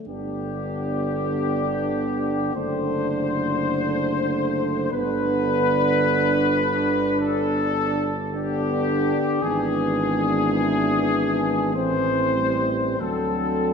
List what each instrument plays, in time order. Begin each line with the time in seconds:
0.07 tuba G1, euphonium D3 B3, french horn section D4, trumpet section G4
2.55 tuba F#1, euphonium D3 A3, french horn section D4, trumpet section C5
4.92 tuba G1, euphonium D3 B3, french horn section D4, trumpet section B4
7.20 trumpet section A4
8.31 euphonium D3 B3, french horn section D4, trumpet section G4
9.42 tuba G#1, euphonium E3 B3, french horn section D4, trumpet section G#4
11.74 tuba A1, euphonium E3 A3, french horn section C4, trumpet section C5
12.37 euphonium G3
12.99 tuba D2, euphonium D3 F#3, french horn section C4, trumpet section A4